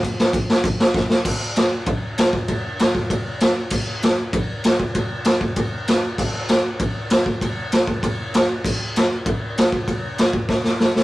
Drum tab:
CC |x-x-x---|x-------|--------|x-------|
RD |--------|--x-x-x-|x-x-x-x-|--x-x-x-|
SD |-o-o-ooo|--o---o-|--o---o-|--o---o-|
BD |o-o-o-o-|o---o--o|o--oo---|o---o--o|

CC |--------|x-------|--------|x-------|
RD |x-x-x-x-|--x-x-x-|x-x-x-x-|--x-x-x-|
SD |--o---o-|--o---o-|--o---o-|--o---o-|
BD |o--oo---|o---o--o|o--oo---|o---o--o|

CC |--------|
RD |x-x-----|
SD |--o-oooo|
BD |o--oo---|